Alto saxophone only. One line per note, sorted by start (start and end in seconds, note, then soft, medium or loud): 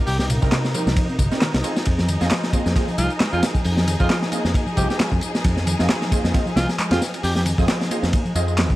0.07 0.15 G4 medium
0.19 0.26 G4 medium
2.98 3.10 F4 loud
3.32 3.42 F4 medium
4.00 4.06 F4 medium
4.10 4.18 F4 medium
4.77 4.85 G4 medium
4.90 4.96 G4 medium
6.56 6.68 F4 loud
6.91 7.01 F4 medium
7.24 7.32 G4 medium
7.36 7.42 G4 medium